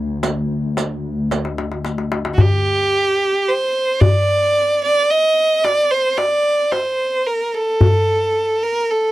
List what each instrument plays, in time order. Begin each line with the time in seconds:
Already playing: cello section D2
0.23 riq, darbuka tek
0.77 riq, darbuka tek
1.31 riq, darbuka tek
1.45 darbuka ka
1.58 darbuka tek
1.72 darbuka ka
1.85 riq, darbuka tek
1.98 darbuka ka
2.12 darbuka tek
2.25 darbuka ka
2.34 violin F#4
2.38 violin G4, darbuka dum
3.48 violin C5
4.01 violin D5, darbuka dum
4.83 violin D5
5.11 violin D#5
5.64 violin D5, darbuka tek
5.91 violin C5
6.18 violin D5, darbuka tek
6.72 violin C5, darbuka tek
7.27 violin A#4
7.54 violin A4
7.81 darbuka dum
8.63 violin A#4
8.91 violin A4